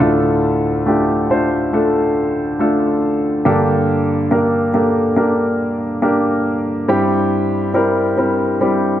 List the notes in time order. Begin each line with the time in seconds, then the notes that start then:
0.00 D2 A2 A3 D4 F4 A4
0.86 A3 D4 F4 G4
1.30 A3 D4 F4 C5
1.73 A3 D4 F4 A4
2.59 A3 D4 F4 A4
3.45 G2 D3 A#3 D4 G4 A4
4.31 A#3 D4 G4 A#4
4.74 A#3 D4 G4 A4
5.16 A#3 D4 G4 A#4
6.02 A#3 D4 G4 A#4
6.88 G2 G3 C4 E4 G4
7.74 G3 C4 E4 A#4
8.18 G3 C4 E4 A#4
8.61 G3 C4 E4 G4